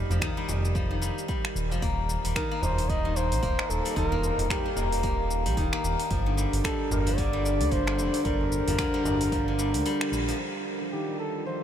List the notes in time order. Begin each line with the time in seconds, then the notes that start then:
Already playing: D#3 G3
0.10 F1 F3, darbuka dum, shaker
0.22 D#3, finger snap, kick, shaker
0.37 G3
0.48 F1, darbuka ka, darbuka tek, darbuka dum, shaker
0.65 shaker
0.75 F3, kick, shaker
0.91 D#3
1.02 G3, shaker
1.18 shaker
1.28 G3, kick, shaker
1.45 finger snap
1.56 D#1, shaker
1.70 F1 F3, darbuka ka, shaker
1.82 D#1 A#3, kick, open hi-hat, shaker
2.09 shaker
2.25 D#1 G3, open hi-hat, shaker
2.36 D#3 A#4, finger snap, kick, open hi-hat, shaker
2.51 A#3
2.62 D#1 C5, darbuka ka, darbuka tek, darbuka dum, shaker
2.78 open hi-hat, shaker
2.89 G3 D#5, kick, open hi-hat, shaker
3.05 D#3
3.16 A#3 C5, darbuka tek, shaker
3.31 A#1, open hi-hat, shaker
3.43 D#1 A#3, kick, open hi-hat, shaker
3.59 finger snap, darbuka tek
3.70 D#1 A4, shaker
3.85 G3, open hi-hat, shaker
3.96 D#1 D#3 A#4, kick, open hi-hat, shaker
4.12 A#3, darbuka dum
4.24 shaker
4.39 D#1, open hi-hat, darbuka dum, shaker
4.50 G3 G4, finger snap, kick, open hi-hat, shaker
4.66 D#3
4.76 D#1 A#3, darbuka ka, darbuka tek, darbuka dum, shaker
4.92 open hi-hat, shaker
5.03 A#3, kick, open hi-hat, shaker
5.31 shaker
5.46 A#1 G3, open hi-hat, shaker
5.57 D#1 D#3, kick, open hi-hat, shaker
5.73 A#3, finger snap
5.84 D#1, shaker
6.00 open hi-hat, darbuka ka, shaker
6.10 G1 F3, kick, open hi-hat, shaker
6.26 D3
6.37 G3, shaker
6.53 G1, open hi-hat, shaker
6.64 G3 A4, finger snap, kick, open hi-hat, shaker
6.91 G1 A#4, darbuka ka, darbuka tek, darbuka dum, shaker
7.07 F3, open hi-hat, shaker
7.18 D3 D5, kick, open hi-hat, shaker
7.33 G3
7.44 darbuka tek, shaker
7.60 D2, open hi-hat, shaker
7.71 G1 F3 C5, kick, open hi-hat, shaker
7.87 D3, finger snap, darbuka tek
7.98 F1 G3, shaker
8.14 open hi-hat, shaker
8.25 G1 G3 A#4, kick, open hi-hat, darbuka ka, shaker
8.41 darbuka dum
8.52 shaker
8.67 G1 F3, open hi-hat, darbuka dum, shaker
8.78 D3, finger snap, kick, open hi-hat, shaker
8.94 G3
9.05 G1, darbuka ka, darbuka tek, darbuka dum, shaker
9.21 open hi-hat, darbuka tek, shaker
9.32 F3, kick, open hi-hat, shaker
9.48 D3
9.59 G3, darbuka tek, shaker
9.74 D2, open hi-hat, shaker
9.86 G3, open hi-hat, shaker
10.01 finger snap
10.12 A#1, shaker
10.28 F3, open hi-hat, darbuka ka, shaker
10.39 G3 F4, shaker
10.62 C5 A5
10.66 D#5, shaker
10.81 F3, shaker
10.92 D#3 G4, shaker
11.08 G3
11.19 A4, shaker
11.36 shaker
11.46 F3 C5, shaker